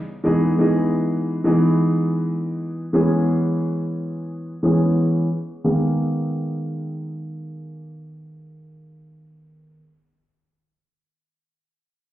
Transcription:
0.24 0.56 E3 medium
0.24 0.56 G#3 medium
0.24 0.56 B3 medium
0.24 0.57 D#4 medium
0.24 0.57 G#4 loud
0.58 1.37 E3 medium
0.58 1.38 G#3 medium
0.58 1.38 B3 medium
0.58 1.38 D#4 medium
0.58 1.38 G#4 loud
1.44 2.84 E3 loud
1.44 2.84 G#3 medium
1.44 2.84 B3 medium
1.44 2.85 D#4 medium
1.44 2.85 G#4 loud
2.93 4.51 E3 medium
2.93 4.51 G#3 medium
2.93 4.51 B3 medium
2.93 4.52 C#4 medium
2.93 4.52 G#4 loud
4.63 5.26 E3 medium
4.63 5.26 G#3 medium
4.63 5.26 B3 medium
4.63 5.27 C#4 medium
4.63 5.27 G#4 loud
5.64 9.80 D#3 medium
5.64 9.80 G#3 medium
5.64 9.80 A#3 medium
5.64 9.80 B3 medium
5.64 9.81 G#4 medium

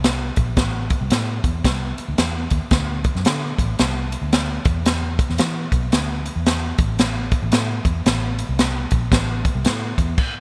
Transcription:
0.00 0.30 C2 medium
0.04 snare loud
0.04 closed hi-hat loud
0.36 0.54 A#1 medium
0.36 kick medium
0.36 closed hi-hat medium
0.57 0.93 A1 loud
0.57 kick loud
0.57 snare loud
0.57 closed hi-hat medium
0.90 kick medium
0.90 closed hi-hat medium
1.01 1.09 C2 medium
1.10 1.38 A2 loud
1.10 snare loud
1.10 closed hi-hat loud
1.44 1.61 E2 medium
1.44 kick medium
1.44 closed hi-hat medium
1.64 1.92 C2 medium
1.64 kick medium
1.64 snare loud
1.64 closed hi-hat medium
1.98 muted fingered electric bass stroke soft
1.98 closed hi-hat medium
2.08 2.16 D2 medium
2.18 2.46 E2 medium
2.18 snare loud
2.18 closed hi-hat loud
2.50 2.60 D#2 loud
2.50 kick medium
2.50 closed hi-hat medium
2.71 3.07 D2 medium
2.71 kick loud
2.71 snare loud
2.71 closed hi-hat medium
3.04 kick medium
3.04 closed hi-hat medium
3.15 3.23 F#2 medium
3.15 snare soft
3.25 3.52 D3 loud
3.25 snare loud
3.25 closed hi-hat medium
3.58 3.75 A1 medium
3.58 kick medium
3.58 closed hi-hat medium
3.79 4.15 C2 medium
3.79 snare loud
3.79 closed hi-hat medium
4.12 closed hi-hat medium
4.22 4.57 D2 medium
4.33 snare loud
4.33 closed hi-hat loud
4.65 5.18 E2 loud
4.65 kick loud
4.65 closed hi-hat medium
4.86 snare loud
4.86 closed hi-hat medium
5.19 kick medium
5.19 closed hi-hat medium
5.29 5.38 E2 medium
5.29 snare soft
5.38 5.67 E3 loud
5.38 snare loud
5.38 closed hi-hat loud
5.72 5.89 B1 medium
5.72 kick medium
5.72 closed hi-hat medium
5.92 6.28 D2 medium
5.92 snare loud
5.92 closed hi-hat loud
6.26 closed hi-hat medium
6.36 6.71 E2 medium
6.46 snare loud
6.46 closed hi-hat medium
6.78 7.31 A1 loud
6.78 kick loud
6.78 closed hi-hat medium
6.99 snare loud
6.99 closed hi-hat medium
7.32 kick medium
7.32 closed hi-hat medium
7.42 7.52 A1 medium
7.52 7.80 A2 loud
7.52 snare loud
7.52 closed hi-hat loud
7.85 8.02 E2 medium
7.85 kick medium
7.85 closed hi-hat medium
8.06 8.41 A1 loud
8.06 snare loud
8.06 closed hi-hat medium
8.39 closed hi-hat medium
8.49 8.85 C2 medium
8.59 snare loud
8.59 closed hi-hat loud
8.91 9.08 A#1 medium
8.91 kick medium
8.91 closed hi-hat medium
9.12 9.47 A1 loud
9.12 kick loud
9.12 snare loud
9.12 closed hi-hat medium
9.45 kick medium
9.45 closed hi-hat medium
9.55 9.66 C2 medium
9.65 9.92 A2 loud
9.65 snare loud
9.65 closed hi-hat loud
9.98 10.15 E2 medium
9.98 kick medium
9.98 closed hi-hat medium
10.18 kick loud
10.18 crash loud

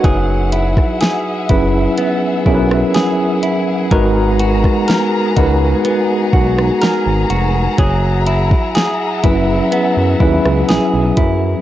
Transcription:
0.00 1.61 B3 medium
0.00 0.27 D#4 medium
0.00 0.52 F#4 medium
0.00 0.27 B4 medium
0.00 7.75 F#5 medium
0.04 0.79 F#1 loud
0.04 3.91 F#3 medium
0.04 11.61 G#4 medium
0.04 1.01 G#4 medium
0.04 3.88 E5 medium
0.04 kick loud
0.04 closed hi-hat medium
0.52 1.48 E4 medium
0.52 closed hi-hat medium
0.77 kick loud
0.77 cross-stick medium
1.01 2.94 G#4 medium
1.01 snare loud
1.01 closed hi-hat medium
1.49 1.87 F#1 loud
1.49 2.16 F#3 medium
1.49 2.16 C#4 medium
1.49 2.45 E4 medium
1.49 2.17 E4 medium
1.49 2.17 G#4 medium
1.49 2.17 B4 medium
1.49 kick loud
1.49 closed hi-hat medium
1.98 4.91 B3 medium
1.98 closed hi-hat medium
2.46 2.83 B1 medium
2.46 3.46 F#3 medium
2.46 3.47 C#4 medium
2.46 3.42 E4 medium
2.46 3.47 E4 medium
2.46 3.47 G#4 medium
2.46 2.54 A#4 medium
2.46 kick medium
2.54 3.51 B4 loud
2.71 cross-stick loud
2.94 3.91 G#4 medium
2.94 snare loud
2.94 closed hi-hat medium
3.43 4.01 E4 medium
3.43 closed hi-hat medium
3.91 4.66 G#1 loud
3.91 7.78 G#3 medium
3.91 4.92 G#3 loud
3.91 7.75 B3 medium
3.91 4.92 D#4 loud
3.91 4.92 F#4 loud
3.91 4.87 A#4 medium
3.91 4.92 A#4 loud
3.91 4.92 B4 loud
3.91 5.83 A#5 medium
3.91 kick loud
3.91 closed hi-hat medium
4.39 5.36 F#4 medium
4.39 closed hi-hat medium
4.64 kick loud
4.64 cross-stick medium
4.88 6.80 A#4 medium
4.88 snare loud
4.88 closed hi-hat medium
5.36 5.74 C#2 loud
5.36 6.70 G#3 medium
5.36 6.70 D#4 medium
5.36 6.33 F#4 medium
5.36 6.71 F#4 medium
5.36 6.71 A#4 medium
5.36 6.71 B4 loud
5.36 kick medium
5.36 closed hi-hat medium
5.85 9.35 B3 medium
5.85 11.61 A#5 medium
5.85 closed hi-hat medium
6.33 6.71 B1 medium
6.33 7.30 F#4 medium
6.33 kick loud
6.58 cross-stick loud
6.82 7.78 A#4 medium
6.82 snare loud
6.82 closed hi-hat medium
7.06 7.25 G#1 loud
7.30 7.68 F1 loud
7.30 8.27 F#4 medium
7.30 closed hi-hat medium
7.78 8.53 F#1 loud
7.78 11.61 F#3 medium
7.78 8.75 G#4 medium
7.78 11.61 E5 medium
7.78 11.61 F#5 medium
7.78 kick loud
7.78 closed hi-hat medium
8.27 9.22 E4 medium
8.27 closed hi-hat medium
8.51 kick loud
8.75 10.68 G#4 medium
8.75 snare loud
8.75 closed hi-hat medium
9.23 9.61 F#1 medium
9.23 9.90 F#3 medium
9.23 9.91 C#4 medium
9.23 10.19 E4 medium
9.23 9.91 E4 medium
9.23 9.91 G#4 medium
9.23 9.91 B4 medium
9.23 kick loud
9.23 closed hi-hat medium
9.72 11.61 B3 medium
9.72 closed hi-hat medium
9.97 10.15 F#2 loud
10.20 10.39 D#2 medium
10.20 11.21 F#3 medium
10.20 11.21 C#4 medium
10.20 11.16 E4 medium
10.20 11.21 E4 medium
10.20 11.21 G#4 medium
10.20 11.21 B4 loud
10.20 kick loud
10.45 10.64 C#2 loud
10.45 cross-stick loud
10.69 10.79 B1 soft
10.69 11.61 G#4 medium
10.69 snare loud
10.69 closed hi-hat medium
10.94 11.12 B1 medium
11.17 11.55 F#2 loud
11.17 11.61 E4 medium
11.17 kick medium
11.17 closed hi-hat medium

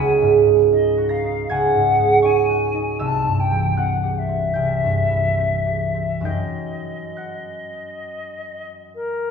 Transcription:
0.00 1.49 C#2 medium
0.00 2.87 F#3 soft
0.00 0.60 C#4 soft
0.00 0.71 D#4 soft
0.00 0.97 F#4 soft
0.00 0.43 G#5 medium
0.00 0.86 G#5 medium
0.00 3.85 B5 medium
0.00 3.84 B6 medium
0.00 1.02 C7 medium
0.22 1.73 G#2 soft
0.46 1.98 G#3 soft
0.72 1.23 D#4 soft
0.72 1.11 D#5 medium
0.98 2.48 F#4 soft
1.09 1.51 F5 medium
1.09 3.04 A#5 medium
1.09 1.75 A#6 medium
1.24 2.22 D#4 soft
1.49 3.04 C#2 soft
1.49 2.26 F#5 medium
1.49 3.04 G#5 medium
1.49 3.04 G#6 medium
1.74 3.04 G#2 soft
1.99 3.03 G#3 soft
2.22 2.73 D#4 soft
2.22 3.03 C#5 soft
2.22 3.00 G#5 medium
2.22 3.02 C#6 medium
2.49 3.03 F#4 soft
2.74 3.03 D#4 soft
2.99 4.54 C2 soft
2.99 6.29 E5 medium
2.99 3.41 A5 soft
2.99 6.29 E6 medium
3.26 4.83 G2 soft
3.39 3.78 G5 medium
3.52 5.09 E3 soft
3.77 4.28 C4 soft
3.77 4.20 F#5 soft
3.77 7.17 F#5 soft
3.77 5.13 F#6 medium
4.04 5.65 G4 soft
4.18 6.26 E5 medium
4.29 5.37 C4 soft
4.53 6.29 C2 soft
4.53 6.24 G5 soft
4.53 6.23 G6 medium
4.84 6.30 G2 soft
5.10 6.29 E3 soft
5.38 5.94 C4 soft
5.66 6.30 G4 soft
5.95 6.29 C4 soft
6.20 9.31 F#2 soft
6.20 9.31 F#3 soft
6.20 9.31 C#4 soft
6.20 9.31 D#4 soft
6.20 9.31 A#4 soft
6.25 8.68 D#5 soft
6.25 9.31 G5 soft
6.25 9.31 G6 medium
7.17 9.31 F#5 soft
7.17 9.31 F#6 soft
8.94 9.31 A#4 soft

